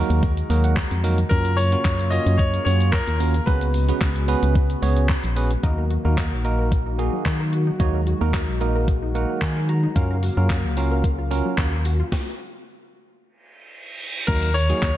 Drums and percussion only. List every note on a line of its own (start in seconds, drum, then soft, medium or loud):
0.10 closed hi-hat medium
0.10 shaker medium
0.23 kick loud
0.23 shaker medium
0.37 closed hi-hat medium
0.37 shaker medium
0.50 open hi-hat medium
0.50 shaker medium
0.64 closed hi-hat medium
0.64 shaker medium
0.77 kick loud
0.77 clap loud
0.77 shaker medium
0.91 closed hi-hat medium
0.91 shaker medium
1.04 open hi-hat medium
1.04 shaker medium
1.18 closed hi-hat medium
1.18 shaker medium
1.31 kick loud
1.31 shaker medium
1.45 closed hi-hat medium
1.45 shaker medium
1.58 open hi-hat medium
1.58 shaker medium
1.72 closed hi-hat medium
1.72 shaker medium
1.85 kick loud
1.85 clap loud
1.85 shaker medium
1.99 closed hi-hat medium
1.99 shaker medium
2.12 open hi-hat medium
2.12 shaker soft
2.27 closed hi-hat medium
2.27 shaker medium
2.39 kick loud
2.39 shaker medium
2.54 closed hi-hat medium
2.54 shaker medium
2.67 open hi-hat medium
2.67 shaker medium
2.81 closed hi-hat medium
2.81 shaker medium
2.93 kick loud
2.93 clap loud
2.93 shaker medium
3.08 closed hi-hat medium
3.08 shaker medium
3.20 open hi-hat medium
3.20 shaker medium
3.34 closed hi-hat medium
3.34 shaker medium
3.47 kick loud
3.47 shaker medium
3.61 closed hi-hat medium
3.61 shaker medium
3.74 open hi-hat medium
3.74 shaker medium
3.89 closed hi-hat medium
3.89 shaker medium
4.01 kick loud
4.01 clap loud
4.01 shaker medium
4.16 closed hi-hat medium
4.16 shaker medium
4.28 open hi-hat medium
4.28 shaker soft
4.43 closed hi-hat medium
4.43 shaker medium
4.55 kick loud
4.55 shaker medium
4.70 closed hi-hat medium
4.70 shaker medium
4.83 open hi-hat medium
4.83 shaker medium
4.97 closed hi-hat medium
4.97 shaker medium
5.09 kick loud
5.09 clap loud
5.09 shaker medium
5.24 closed hi-hat medium
5.24 shaker medium
5.36 open hi-hat medium
5.36 shaker medium
5.51 closed hi-hat medium
5.51 shaker medium
5.63 kick loud
5.63 closed hi-hat medium
5.91 closed hi-hat medium
6.18 kick loud
6.18 clap loud
6.18 closed hi-hat medium
6.45 closed hi-hat soft
6.72 kick loud
6.72 closed hi-hat medium
6.99 closed hi-hat medium
7.26 kick loud
7.26 clap loud
7.26 closed hi-hat medium
7.53 closed hi-hat medium
7.80 kick loud
7.80 closed hi-hat medium
8.07 closed hi-hat medium
8.34 kick loud
8.34 clap loud
8.34 closed hi-hat medium
8.61 closed hi-hat soft
8.88 kick loud
8.88 closed hi-hat medium
9.15 closed hi-hat medium
9.42 kick loud
9.42 clap loud
9.42 closed hi-hat medium
9.69 closed hi-hat medium
9.96 kick loud
9.96 closed hi-hat medium
10.23 open hi-hat medium
10.50 kick loud
10.50 clap loud
10.50 closed hi-hat medium
10.77 open hi-hat medium
11.04 kick loud
11.04 closed hi-hat medium
11.31 open hi-hat medium
11.58 kick loud
11.58 clap loud
11.58 closed hi-hat medium
11.85 open hi-hat medium
12.12 kick loud
12.12 snare medium
14.28 kick loud
14.28 crash loud
14.28 shaker medium
14.42 closed hi-hat medium
14.42 shaker medium
14.55 open hi-hat medium
14.55 shaker medium
14.70 closed hi-hat medium
14.70 shaker medium
14.82 kick loud
14.82 clap loud
14.82 shaker medium